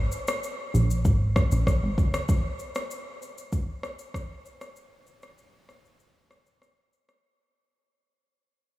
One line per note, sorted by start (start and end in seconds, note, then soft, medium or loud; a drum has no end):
0.12 shaker medium
0.28 cross-stick medium
0.28 shaker medium
0.43 shaker medium
0.74 1.07 A#1 medium
0.74 shaker medium
0.91 shaker medium
1.05 1.41 G#1 loud
1.05 kick medium
1.05 shaker medium
1.36 kick medium
1.36 cross-stick medium
1.36 shaker soft
1.52 1.75 A#1 loud
1.52 shaker medium
1.67 kick medium
1.67 cross-stick medium
1.67 shaker medium
1.83 1.99 G#1 medium
1.98 2.21 F#1 medium
1.98 kick medium
1.98 shaker medium
2.14 cross-stick medium
2.14 shaker medium
2.29 kick loud
2.29 shaker medium
2.59 shaker soft
2.75 cross-stick medium
2.75 shaker medium
2.91 shaker medium
3.22 shaker medium
3.38 shaker medium
3.52 kick medium
3.52 shaker medium
3.83 cross-stick medium
3.83 shaker soft
3.99 shaker medium
4.14 kick medium
4.14 cross-stick medium
4.14 shaker medium
4.46 shaker soft
4.61 cross-stick medium
4.61 shaker medium
4.76 shaker medium
5.07 shaker soft
5.22 cross-stick medium
5.22 shaker medium
5.38 shaker medium
5.69 cross-stick medium
5.69 shaker medium
5.85 shaker medium
6.00 shaker medium
6.31 cross-stick medium
6.31 shaker soft
6.46 shaker medium
6.62 cross-stick medium
6.62 shaker medium
6.93 shaker soft
7.09 cross-stick medium
7.09 shaker medium